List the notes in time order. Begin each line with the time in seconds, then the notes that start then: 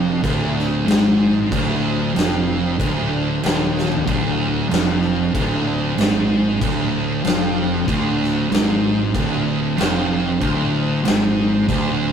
Already playing: F1 F2
0.24 D1 D2, kick, crash
0.59 snare
0.87 G#1 G#2, snare, crash
1.52 D1 D2, kick, crash
2.15 F1 F2, snare, crash
2.79 D1 D2, kick, crash
3.43 D#1 D#2, snare, crash
3.79 snare
3.92 floor tom
4.07 D1 D2, kick, crash
4.70 F1 F2, snare, crash
5.35 D1 D2, kick, crash
5.98 G#1 G#2, snare, crash
6.61 D1 D2, kick, crash
7.24 F1 F2, snare, crash
7.88 D1 D2, kick, crash
8.23 snare
8.51 G#1 G#2, snare, crash
9.14 D1 D2, kick, crash
9.78 F1 F2, snare, crash
10.41 D1 D2, kick, crash
11.03 G#1 G#2, crash
11.08 snare
11.68 D1 D2, kick, crash